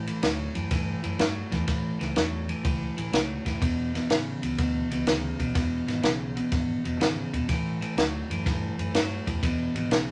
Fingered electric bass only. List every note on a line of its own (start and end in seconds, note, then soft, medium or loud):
0.23 0.46 D2 medium
0.56 0.67 F#2 medium
0.71 0.94 G2 medium
1.04 1.15 F#2 medium
1.19 1.43 G2 medium
1.52 1.63 E2 medium
1.68 1.91 A1 medium
2.01 2.12 C#2 medium
2.16 2.51 E2 medium
2.65 2.88 C#2 medium
2.98 3.09 A1 medium
3.14 3.37 C#2 medium
3.46 3.57 F#1 medium
3.62 3.96 E1 loud
4.10 4.33 A1 medium
4.43 4.54 C#2 medium
4.58 4.82 D2 medium
4.91 5.02 C#2 medium
5.07 5.30 D2 medium
5.39 5.51 B1 medium
5.55 5.79 E1 loud
5.88 6.00 G#1 medium
6.04 6.38 B1 medium
6.52 6.76 G#1 medium
6.85 6.96 E1 medium
7.00 7.24 G#1 medium
7.33 7.44 E1 medium
7.49 7.83 A1 loud
7.97 8.20 D2 medium
8.30 8.41 F#2 medium
8.46 8.69 G2 medium
8.78 8.90 F#2 medium
8.94 9.18 G2 loud
9.27 9.38 E2 loud
9.43 9.66 E1 loud
9.75 9.86 G#1 medium
9.90 10.11 B1 medium